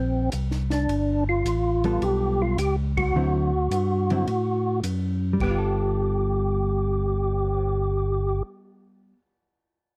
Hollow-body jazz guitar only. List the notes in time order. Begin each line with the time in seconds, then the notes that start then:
1.84 G3 B3 F4 A4
3.16 D3 F#3 C4 E4
4.11 D3 F#3 C4 E4
5.33 G3
5.43 B3
5.51 F4
5.58 A4